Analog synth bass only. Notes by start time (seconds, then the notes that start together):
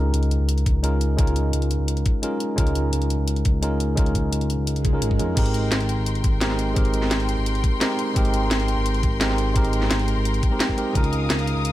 Already playing: C#2
0.14 C#2
0.40 C#2
0.66 C#2
1.19 C#2
1.53 C#2
1.80 C#2
2.58 C#2
2.93 C#2
3.19 C#2
3.45 C#2
3.98 C#2
4.32 C#2
4.58 C#2
5.02 G#1
5.20 F2
5.37 G#1
5.72 G#1
5.98 G#1
6.24 G#1
6.76 G#1
7.11 G#1
7.38 G#1
8.16 G#1
8.51 G#1
8.77 G#1
9.03 G#1
9.56 G#1
9.91 G#1
10.17 G#1
10.95 C#2
11.30 C#2
11.56 C#2